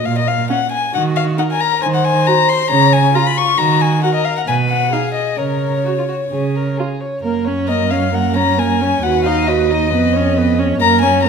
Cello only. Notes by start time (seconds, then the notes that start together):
0.06 A#2
0.94 D#3
1.82 D#3
2.70 C#3
3.58 D#3
4.46 B2
5.38 C#3
6.31 C#3
7.23 F#2
9.03 D#2
9.93 F2
10.81 F#2